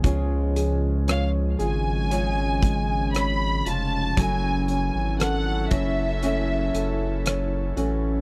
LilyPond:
<<
  \new Staff \with { instrumentName = "Violin section" } { \time 4/4 \key fis \minor \tempo 4 = 58 r4 eis''8 gis''4. b''8 a''8 | gis''8 gis''8 fis''8 e''4. r4 | }
  \new Staff \with { instrumentName = "Grand piano" } { \time 4/4 \key fis \minor cis'8 gis'8 cis''8 gis'8 cis''8 gis8 cis''8 eis'8 | fis8 cis'8 a'8 cis''8 cis'8 a'8 cis''8 cis'8 | }
  \new Staff \with { instrumentName = "Nylon-string guitar" } { \time 4/4 \key fis \minor <cis gis cis' eis' gis'>4. <cis' eis' gis'>8 <cis gis cis' eis' gis'>4. <cis' eis'>8 | <fis, cis e a cis' fis'>4. <e a cis' fis'>8 <fis, cis e a cis' fis'>4. <e a cis' fis'>8 | }
  \new Staff \with { instrumentName = "Analog synth pad" } { \clef bass \time 4/4 \key fis \minor << { <cis eis gis>1 | <fis e' a'>1 | } \\ { cis'1~ | cis'1 | } >> }
  \new Staff \with { instrumentName = "Sub bass" } { \clef bass \time 4/4 \key fis \minor cis,4. gis,,2 eis,,8 | fis,,8. gis,,8. fis,,4 fis,,4 a,,8 | }
  \new DrumStaff \with { instrumentName = "Drums" } \drummode { \time 4/4 <hh bd>8 hh8 <hh ss>8 hh8 hh8 <hh bd>8 <hh ss>8 hh8 | <hh bd>8 hh8 <hh ss>8 <hh bd>8 hh8 hh8 <hh ss>8 hh8 | }
>>